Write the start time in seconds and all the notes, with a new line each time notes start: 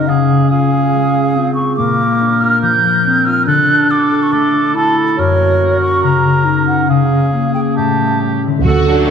Already playing: A#3 F#4 A#4
0.07 C#3 C#4 G#4 F5
0.50 F4 G#4 F5
0.72 G#4
0.93 G#3
1.35 C4 F4
1.55 G#4 C#6
1.77 A#2 A#3 A#4 D6
2.00 A#3
2.21 D4
2.41 F4 F6
2.62 F3 G6
2.84 A#3
3.05 C4 D4
3.25 F4 F6
3.46 D3 D4 A4 F#6
3.68 D4
3.89 F#4 A4 D6
4.11 A4
4.23 C#6
4.32 A3 A4 D6
4.54 D4
4.74 E4 F#4 A4 A5
4.97 A4
5.17 F#2 F#4 A#4 C#5
5.39 A#3
5.60 C#4
5.82 F#4 C#6
6.03 C#3 A#4 A#5
6.25 A#3
6.45 C#4 D#4
6.67 F#4 F#5
6.88 C#3 C#4 G#4 F5
7.12 C#4
7.32 A#3 F4
7.54 G#4 G5
7.76 A2 A3 G4 A5
8.00 G3
8.22 C#4
8.43 D3 E4
8.52 A3
8.56 D4
8.61 D3 F#5
8.65 D2 F#4 A4
8.87 D3 F#3 A3 D4